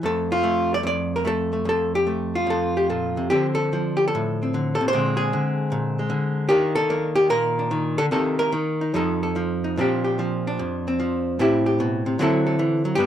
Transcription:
0.03 0.83 F2 medium
0.03 0.43 A3 soft
0.03 0.72 A4 medium
0.32 0.71 F4 medium
0.43 1.24 A3 medium
0.74 0.81 D5 medium
0.83 1.64 F2 medium
0.83 1.13 D5 medium
1.16 1.27 A#4 medium
1.25 1.52 A3 medium
1.25 1.67 A4 medium
1.53 1.98 A3 soft
1.65 2.45 F2 medium
1.65 1.94 A4 medium
1.95 2.49 G4 medium
2.07 3.30 A3 medium
2.35 3.30 F4 medium
2.47 3.31 F2 medium
2.47 2.77 A4 medium
2.77 2.90 G4 medium
2.90 3.17 A#2 soft
2.90 3.32 A4 medium
3.17 3.31 C3 soft
3.30 4.53 D3 medium
3.30 3.72 F3 soft
3.30 4.41 C4 soft
3.30 4.95 D4 soft
3.30 3.46 G4 medium
3.55 3.96 A4 medium
3.73 6.49 F3 medium
3.97 4.06 G4 medium
4.08 4.74 A4 medium
4.15 4.92 A2 medium
4.43 4.93 C4 soft
4.54 4.80 D3 medium
4.75 4.88 A4 medium
4.81 4.93 C3 medium
4.88 5.16 C5 loud
4.93 5.32 A#2 medium
4.93 5.32 D3 soft
4.93 5.98 G#3 soft
4.93 6.51 C4 soft
5.17 6.10 G#4 medium
5.33 6.08 D3 medium
5.72 6.11 A#2 medium
5.99 6.50 G#3 soft
6.10 6.48 D3 medium
6.49 7.70 D#3 medium
6.49 6.89 A#3 medium
6.49 7.58 D4 medium
6.49 6.75 G4 medium
6.75 7.15 A4 loud
6.90 8.09 A#3 medium
7.15 7.29 G4 loud
7.30 7.97 A#2 medium
7.30 7.98 A#4 loud
7.59 8.10 D4 soft
7.71 7.98 D#3 medium
7.98 8.11 D3 medium
7.98 8.05 A4 loud
8.11 8.52 C3 medium
8.11 8.51 D#3 soft
8.11 8.92 A#3 soft
8.11 8.80 D#4 medium
8.11 8.39 A4 medium
8.39 8.93 A#4 medium
8.52 8.93 D#3 medium
8.81 8.92 D#4 soft
8.94 9.77 F2 medium
8.94 9.35 F3 medium
8.94 9.63 D#4 medium
8.94 9.22 A4 medium
9.23 9.76 A4 medium
9.36 9.75 F3 medium
9.64 9.75 D#4 medium
9.77 10.59 A#2 medium
9.77 10.18 F3 medium
9.77 10.86 C4 medium
9.77 10.46 D4 medium
9.77 10.03 G4 medium
10.04 11.39 G4 medium
10.19 10.98 F3 medium
10.47 11.39 D4 medium
10.59 11.39 F2 medium
10.88 11.39 C4 medium
11.00 11.38 F3 medium
11.39 12.18 A2 medium
11.39 12.18 C4 medium
11.39 12.19 E4 medium
11.39 11.65 G4 medium
11.66 12.18 G4 medium
11.80 12.06 B2 medium
12.06 12.19 C3 medium
12.19 12.97 D3 medium
12.19 12.59 F#3 medium
12.19 12.97 C4 medium
12.19 12.98 E4 medium
12.19 12.46 A4 medium
12.47 12.95 A4 medium
12.59 12.85 E3 medium
12.85 12.98 F#3 medium
12.95 13.06 G2 medium
12.95 13.06 G3 medium
12.95 13.06 B3 medium
12.95 13.06 G4 loud
13.00 13.06 D4 medium

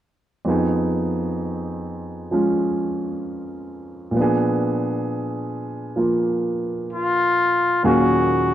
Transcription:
0.45 4.14 F2 soft
0.45 2.30 F3 soft
0.45 4.15 B3 soft
0.45 4.15 D#4 soft
0.50 4.16 G#4 soft
2.31 4.12 F3 soft
2.31 4.15 G#3 soft
2.31 4.15 C#4 soft
2.31 4.16 F4 soft
4.11 7.81 A#2 soft
4.11 5.94 F3 soft
4.16 7.84 B3 soft
4.16 7.85 D4 soft
4.21 7.84 G#4 soft
5.96 7.82 F3 soft
5.96 7.83 A#3 soft
5.96 7.84 F4 soft
6.93 7.80 F4 medium
7.83 8.54 D#2 soft
7.83 8.54 A#2 soft
7.83 8.54 F#3 soft
7.83 8.54 C#4 soft
7.83 8.54 F#4 medium
7.83 8.54 G#4 soft
7.83 8.54 F5 soft

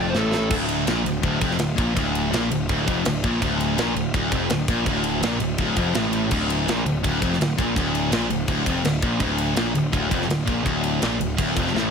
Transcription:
0.00 0.13 F1 loud
0.00 0.14 F2 loud
0.00 0.10 D5 loud
0.10 0.18 C5 loud
0.15 0.49 A1 loud
0.15 0.50 A2 loud
0.15 0.52 A4 loud
0.15 snare medium
0.34 snare medium
0.50 0.84 D1 medium
0.50 0.86 D2 loud
0.50 kick loud
0.50 crash loud
0.69 ride medium
0.87 1.04 A#1 loud
0.87 1.04 A#2 medium
0.87 snare loud
0.87 ride loud
1.04 1.22 D1 medium
1.04 1.19 D2 medium
1.04 ride medium
1.22 1.41 D1 medium
1.22 1.40 D2 loud
1.22 kick loud
1.22 ride loud
1.41 1.58 F1 medium
1.41 1.58 F2 loud
1.41 kick loud
1.41 ride medium
1.51 snare soft
1.59 1.77 D1 medium
1.59 1.74 D2 medium
1.59 snare loud
1.59 ride loud
1.75 1.95 A#1 medium
1.75 1.94 A#2 loud
1.75 kick loud
1.75 ride medium
1.95 2.31 D1 loud
1.95 2.31 D2 loud
1.95 kick loud
1.95 ride loud
2.15 ride medium
2.31 2.50 A#1 loud
2.31 2.50 A#2 loud
2.31 snare loud
2.31 ride loud
2.50 2.68 D1 medium
2.50 2.65 D2 medium
2.50 ride medium
2.69 2.86 D1 loud
2.69 2.87 D2 loud
2.69 kick loud
2.69 ride loud
2.87 3.04 F1 loud
2.87 3.05 F2 loud
2.87 kick loud
2.87 ride medium
3.05 3.22 D1 medium
3.05 3.20 D2 medium
3.05 snare loud
3.05 ride loud
3.24 3.41 A#1 medium
3.24 3.41 A#2 medium
3.24 kick loud
3.24 ride medium
3.42 3.76 D1 loud
3.42 3.77 D2 loud
3.42 kick loud
3.42 ride loud
3.60 ride medium
3.78 3.95 A#1 loud
3.78 3.95 A#2 loud
3.78 snare loud
3.78 ride loud
3.96 4.13 D1 medium
3.96 4.11 D2 medium
3.96 ride medium
4.14 4.31 D1 loud
4.14 4.32 D2 loud
4.14 kick loud
4.14 ride medium
4.32 4.49 F1 loud
4.32 4.50 F2 loud
4.32 kick loud
4.32 ride medium
4.50 4.67 D1 medium
4.50 4.65 D2 medium
4.50 snare loud
4.50 ride loud
4.68 4.85 A#1 loud
4.68 4.86 A#2 medium
4.68 kick loud
4.68 ride medium
4.86 5.20 D1 loud
4.86 5.22 D2 loud
4.86 kick loud
4.86 ride loud
5.04 ride medium
5.21 5.39 A#1 loud
5.21 5.40 A#2 loud
5.21 snare loud
5.21 ride loud
5.40 5.57 D1 medium
5.40 5.55 D2 medium
5.40 ride medium
5.58 5.76 D1 loud
5.58 5.76 D2 loud
5.58 kick loud
5.58 ride loud
5.76 5.94 F1 loud
5.76 5.94 F2 loud
5.76 kick loud
5.76 ride medium
5.94 6.29 A1 loud
5.94 6.31 A2 loud
5.94 snare loud
5.94 ride loud
6.13 ride medium
6.31 6.66 D1 loud
6.31 6.67 D2 loud
6.31 kick loud
6.31 crash loud
6.50 ride medium
6.67 6.85 A#1 loud
6.67 6.85 A#2 loud
6.67 snare loud
6.67 ride loud
6.85 7.02 D1 medium
6.85 7.00 D2 medium
6.85 ride medium
7.03 7.21 D1 loud
7.03 7.21 D2 loud
7.03 kick loud
7.03 ride loud
7.21 7.39 F1 loud
7.21 7.39 F2 loud
7.21 kick loud
7.21 ride medium
7.33 snare soft
7.40 7.57 D1 medium
7.40 7.54 D2 medium
7.40 snare loud
7.40 ride loud
7.57 7.75 A#1 medium
7.57 7.75 A#2 medium
7.57 kick loud
7.57 ride medium
7.76 8.10 D1 loud
7.76 8.11 D2 loud
7.76 kick loud
7.76 ride loud
7.95 ride medium
8.11 8.29 A#1 loud
8.11 8.29 A#2 loud
8.11 snare loud
8.11 ride loud
8.30 8.47 D1 medium
8.30 8.45 D2 medium
8.30 ride medium
8.47 8.65 D1 medium
8.47 8.66 D2 loud
8.47 kick loud
8.47 ride loud
8.66 8.83 F1 loud
8.66 8.84 F2 loud
8.66 kick loud
8.66 ride loud
8.84 9.01 D1 medium
8.84 8.99 D2 medium
8.84 snare loud
8.84 ride loud
9.02 9.20 A#1 medium
9.02 9.20 A#2 loud
9.02 kick loud
9.02 ride medium
9.20 9.54 D1 loud
9.20 9.56 D2 loud
9.20 kick loud
9.20 ride loud
9.38 ride medium
9.55 9.73 A#1 medium
9.55 9.74 A#2 loud
9.55 snare loud
9.55 ride loud
9.74 9.92 D1 medium
9.74 9.89 D2 medium
9.74 ride medium
9.93 10.10 D1 loud
9.93 10.10 D2 loud
9.93 kick loud
9.93 ride loud
10.10 10.28 F1 loud
10.10 10.28 F2 loud
10.10 kick loud
10.10 ride medium
10.22 snare soft
10.28 10.47 D1 medium
10.28 10.43 D2 medium
10.28 snare loud
10.28 ride loud
10.46 10.65 A#1 loud
10.46 10.64 A#2 loud
10.46 kick loud
10.46 ride medium
10.64 11.00 D1 loud
10.64 11.01 D2 loud
10.64 kick loud
10.64 ride loud
10.84 ride medium
11.01 11.20 A#1 medium
11.01 11.19 A#2 loud
11.01 snare loud
11.01 ride loud
11.20 11.38 D1 medium
11.20 11.34 D2 medium
11.20 ride medium
11.38 11.55 D1 loud
11.38 11.56 D2 loud
11.38 kick loud
11.38 ride loud
11.56 11.73 F1 loud
11.56 11.73 F2 loud
11.56 kick loud
11.56 ride medium
11.67 snare soft
11.74 11.91 A1 loud
11.74 11.91 A2 loud
11.74 snare medium

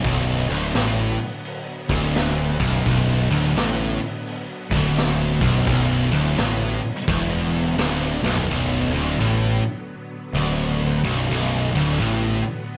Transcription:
0.00 8.45 D3 medium
0.00 8.45 F#3 medium
0.00 8.45 B3 medium
0.00 open hi-hat medium
0.04 0.46 B0 medium
0.04 0.48 B1 loud
0.04 kick loud
0.48 0.73 D1 loud
0.48 0.74 D2 loud
0.48 open hi-hat medium
0.74 1.16 A1 loud
0.74 1.18 A2 loud
0.74 snare loud
0.74 open hi-hat medium
1.19 open hi-hat medium
1.45 open hi-hat medium
1.89 2.56 D1 loud
1.89 2.58 D2 loud
1.89 kick loud
1.89 open hi-hat medium
2.15 snare loud
2.15 open hi-hat medium
2.59 2.84 B0 loud
2.59 2.85 B1 loud
2.59 kick loud
2.59 open hi-hat medium
2.86 3.27 B0 medium
2.86 3.29 B1 loud
2.86 kick loud
2.86 open hi-hat medium
3.29 3.54 D1 loud
3.29 3.55 D2 loud
3.29 open hi-hat medium
3.55 3.97 A1 medium
3.55 3.99 A2 loud
3.55 snare loud
3.55 open hi-hat medium
4.01 open hi-hat medium
4.27 open hi-hat medium
4.70 5.37 D1 medium
4.70 5.40 D2 loud
4.70 kick loud
4.70 open hi-hat medium
4.97 snare loud
4.97 open hi-hat medium
5.41 5.66 B0 loud
5.41 5.66 B1 loud
5.41 kick loud
5.41 open hi-hat medium
5.67 6.08 B0 medium
5.67 6.10 B1 loud
5.67 kick loud
5.67 open hi-hat medium
6.11 6.36 D1 medium
6.11 6.37 D2 loud
6.11 open hi-hat medium
6.37 6.79 A1 loud
6.37 6.80 A2 loud
6.37 snare loud
6.37 open hi-hat medium
6.82 open hi-hat medium
7.08 7.74 E1 loud
7.08 7.77 E2 loud
7.08 kick loud
7.08 open hi-hat medium
7.52 open hi-hat medium
7.77 8.19 D1 loud
7.77 8.21 D2 loud
7.77 snare loud
7.77 open hi-hat medium
8.22 8.47 B0 loud
8.22 8.47 B1 loud
8.22 snare medium
8.35 floor tom loud
8.48 8.89 B0 medium
8.48 8.91 B1 loud
8.48 12.77 D3 medium
8.48 12.77 F#3 medium
8.48 12.77 B3 medium
8.92 9.17 D1 loud
8.92 9.18 D2 loud
9.18 9.60 A1 loud
9.18 9.62 A2 loud
10.33 11.00 D1 loud
10.33 11.03 D2 loud
11.03 11.28 B0 loud
11.03 11.28 B1 loud
11.29 11.71 B0 medium
11.29 11.73 B1 loud
11.73 11.98 D1 loud
11.73 11.99 D2 medium
11.99 12.41 A1 loud
11.99 12.43 A2 loud

